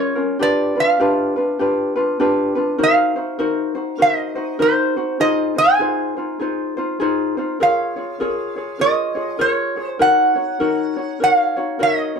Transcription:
Already playing: C#4 F4 G#4 A#4 C#5
0.15 C#4 F4 A#4
0.39 D4 F4 G4 B4 D5
0.76 D4 F4 B4
0.80 F5
0.99 D4 F4 G4 B4
1.36 D4 F4 B4
1.59 D4 F4 G4 B4
1.96 D4 F4 B4
2.20 D4 F4 G4 B4
2.55 D4 F4 B4
2.78 D#4 F#4 A#4 C5
2.83 F5
3.16 D#4 F#4 C5
3.39 D#4 F#4 A#4 C5
3.75 D#4 F#4 C5
3.98 D#4 F#4 A#4 C5 D#5
4.35 D#4 F#4 C5
4.59 D#4 F#4 A#4 C5
4.96 D#4 F#4 C5
5.20 D#4 F4 G#4 C5 D#5
5.56 D#4 F4 C5 G#5
5.79 D#4 F4 G#4 C5
6.17 D#4 F4 C5
6.40 D#4 F4 G#4 C5
6.77 D#4 F4 C5
7.00 D#4 F4 G#4 C5
7.37 D#4 F4 C5
7.60 F4 G#4 A#4 C#5 F5
7.96 F4 G#4 C#5
8.20 F4 G#4 A#4 C#5
8.56 F4 G#4 C#5
8.79 F4 G#4 A#4 C#5 D#5
9.15 F4 G#4 C#5
9.39 F4 G#4 A#4 C#5
9.76 F4 G#4 C#5
9.85 C5
9.99 D#4 F#4 A#4 C#5 F#5
10.36 D#4 F#4 C#5
10.60 D#4 F#4 A#4 C#5
10.97 D#4 F#4 C#5
11.20 D#4 F#4 A#4 C#5 F5
11.57 D#4 F#4 C#5
11.79 D#4 F#4 A#4 C#5 D#5
12.16 C#5

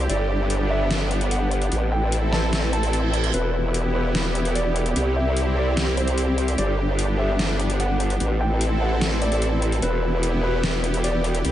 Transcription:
Already playing: G4
0.09 G1 B3 D4 D5, closed hi-hat
0.50 closed hi-hat
0.70 E5
0.91 snare, closed hi-hat
1.11 closed hi-hat
1.21 closed hi-hat
1.31 F#5, closed hi-hat
1.51 closed hi-hat
1.62 closed hi-hat
1.72 A1 C4 E4 A4, closed hi-hat
1.92 G5
2.12 closed hi-hat
2.33 A5, snare
2.53 snare, closed hi-hat, reverse cymbal
2.73 A5, closed hi-hat
2.83 closed hi-hat
2.93 closed hi-hat
3.14 closed hi-hat
3.24 closed hi-hat
3.34 E1 B3 E4 G4 B4, closed hi-hat
3.74 closed hi-hat
3.95 B4
4.15 snare, closed hi-hat
4.35 closed hi-hat
4.45 closed hi-hat
4.55 D5, closed hi-hat
4.76 closed hi-hat
4.86 closed hi-hat
4.96 C2 C4 E4, closed hi-hat
5.16 E5
5.37 closed hi-hat
5.57 D5
5.77 snare, closed hi-hat
5.97 C5, closed hi-hat
6.08 closed hi-hat
6.18 closed hi-hat
6.38 closed hi-hat
6.48 closed hi-hat
6.58 G1 B3 D4 D5, closed hi-hat
6.99 closed hi-hat
7.19 E5
7.39 snare, closed hi-hat
7.60 closed hi-hat
7.70 closed hi-hat
7.80 F#5, closed hi-hat
8.00 closed hi-hat
8.10 closed hi-hat
8.20 A1 C4 E4 A4, closed hi-hat
8.41 G5
8.61 closed hi-hat
8.81 F#5
9.01 snare, closed hi-hat
9.22 D5, closed hi-hat
9.32 closed hi-hat
9.42 closed hi-hat
9.62 closed hi-hat
9.72 closed hi-hat
9.82 E1 B3 E4 G4 B4, closed hi-hat
10.23 closed hi-hat
10.43 B4
10.64 snare, closed hi-hat
10.84 closed hi-hat
10.94 closed hi-hat
11.04 D5, closed hi-hat
11.24 closed hi-hat
11.35 closed hi-hat
11.45 C2 C4 E4, closed hi-hat

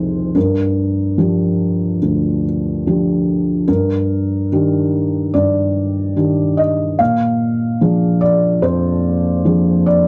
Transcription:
Already playing: C2 F3 D#4 G#4 A#4 C5
0.35 G2 A#4
1.18 F3 D4 G4
2.02 D2
2.87 F3 D4 G4
3.68 G2 A#4
4.52 D#3 D4 G4
5.34 G2 D5
6.16 D#3 D4 G4
6.57 D#5
6.99 A#2 F5
7.81 F3 D4 G#4
8.21 D5
8.62 F2 C5
9.45 F3 D4 G#4
9.86 D5

